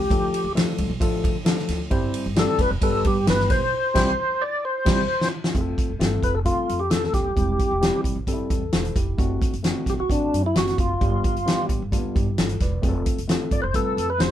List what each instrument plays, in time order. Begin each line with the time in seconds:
Already playing: tonewheel organ G4
0.10 upright bass D2, tine electric piano F3 A3 D4 F4 A4, kick, hi-hat pedal, ride
0.34 ride
0.44 upright bass D2
0.55 tine electric piano F3 A3 D4 F4 A4, snare, ride
0.78 upright bass C2, ride
0.90 upright bass B1
1.00 upright bass A1, tine electric piano F3 A3 D4 F4 A4, kick, ride
1.24 upright bass D3, kick, ride
1.45 tine electric piano F3 A3 D4 E4 A4, snare, ride
1.51 tine electric piano F4
1.58 snare
1.68 upright bass D2, snare, ride
1.90 upright bass G1, tine electric piano G3 C4 E4 G4 C5, kick, ride
2.14 ride
2.26 upright bass G1
2.36 tine electric piano G3 C4 E4 G4 D5, tonewheel organ A4, snare, ride
2.59 upright bass F1, tonewheel organ B4, kick, snare, ride
2.71 upright bass E1
2.81 upright bass G1, tine electric piano G3 B3 D4 G4 B4, tonewheel organ A4, kick, ride
3.04 upright bass G2, tonewheel organ G4, kick, ride
3.26 upright bass G1, tine electric piano G3 B3 D4 G4 B4, tonewheel organ B4, snare, ride
3.40 snare
3.50 upright bass B1, tonewheel organ C5, kick, snare, ride
3.94 upright bass C2, tine electric piano G3 C4 E4 G4 C5, kick, snare, crash
4.41 tonewheel organ D5
4.65 tonewheel organ C5
4.85 upright bass C2, tine electric piano G3 C4 E4 G4, kick, snare, crash
4.92 tine electric piano C5
5.21 snare
5.44 snare
5.54 upright bass F1, tine electric piano A3 C4 F4 G#4, kick, closed hi-hat
5.61 tine electric piano A4
5.78 kick, closed hi-hat
5.89 upright bass F1
5.99 upright bass G1, tine electric piano A3 C4 F4 G4, snare, closed hi-hat
6.06 tine electric piano A4
6.23 upright bass F1, tonewheel organ B4, kick, closed hi-hat
6.35 tonewheel organ A4
6.45 upright bass C2, tine electric piano A3 C4 F4 A4, tonewheel organ F4, kick, closed hi-hat
6.69 upright bass F2, closed hi-hat
6.79 tonewheel organ G4
6.90 upright bass F1, tine electric piano A3 C4 F4 G#4, tonewheel organ A4, snare, closed hi-hat
6.97 tine electric piano A4
7.03 tonewheel organ A4, snare
7.14 upright bass D#1, tonewheel organ G4, kick, snare, closed hi-hat
7.35 upright bass E1, tine electric piano G3 C4 E4 G4, kick, closed hi-hat
7.59 kick, closed hi-hat
7.71 upright bass E1
7.81 tine electric piano G3 C4 E4 G4, snare, closed hi-hat
8.04 upright bass B1, kick, closed hi-hat
8.15 upright bass A1
8.27 upright bass G1, tine electric piano G3 C4 D4 A4, kick, closed hi-hat
8.33 tine electric piano E4
8.50 upright bass E2, tine electric piano A4, kick, closed hi-hat
8.72 upright bass E1, tine electric piano A4 C5, snare, closed hi-hat
8.85 closed hi-hat
8.96 upright bass F1, tine electric piano E4 G4, kick, closed hi-hat
9.17 upright bass F#1, tine electric piano A3 C4 D4 F#4, kick, closed hi-hat
9.42 kick, closed hi-hat
9.53 upright bass F#1, closed hi-hat
9.63 tine electric piano A3 C4 D4 F#4, snare, closed hi-hat
9.86 upright bass B1, tonewheel organ G4, kick, snare, closed hi-hat
9.99 upright bass A1, tonewheel organ F#4
10.09 upright bass A1, tine electric piano A3 C4 D4 F#4, tonewheel organ D4, kick, closed hi-hat
10.34 upright bass F#2, closed hi-hat
10.46 tonewheel organ E4
10.55 upright bass F#1, tine electric piano A3 C4 D4 F#4, tonewheel organ F#4, snare, closed hi-hat
10.67 snare, closed hi-hat
10.78 upright bass F#1, tonewheel organ F4, kick, closed hi-hat
11.01 upright bass G1, tine electric piano G3 B3 D4 G4, kick, closed hi-hat
11.24 kick, closed hi-hat
11.36 upright bass G1, closed hi-hat
11.46 tine electric piano G3 B3 D4 G4, snare, closed hi-hat
11.69 upright bass A1, kick, closed hi-hat
11.82 upright bass G1
11.92 upright bass D2, tine electric piano G3 A#3 D4 F4, kick, closed hi-hat
11.98 tine electric piano B3
12.15 upright bass G2, tine electric piano E4 G4, kick, closed hi-hat
12.38 upright bass G1, tine electric piano F4 A4, snare, closed hi-hat
12.49 closed hi-hat
12.60 upright bass E1, tine electric piano B4 D5, kick, snare, closed hi-hat
12.82 upright bass F1, tine electric piano A3 C4 F4 G#4, kick, closed hi-hat
12.89 tine electric piano A4
13.06 kick, closed hi-hat
13.18 upright bass F1, closed hi-hat
13.27 tine electric piano A3 C4 F4 A4, snare, closed hi-hat
13.51 upright bass G1, tonewheel organ D5, kick, closed hi-hat
13.62 upright bass F1, tonewheel organ B4 C5
13.74 upright bass C2, tine electric piano A3 C4 F4 B4, tonewheel organ A4, kick, closed hi-hat
13.97 upright bass F2, closed hi-hat
14.10 tonewheel organ B4
14.18 upright bass F1, tine electric piano A3 C4 F4 G4, tonewheel organ C5, snare, closed hi-hat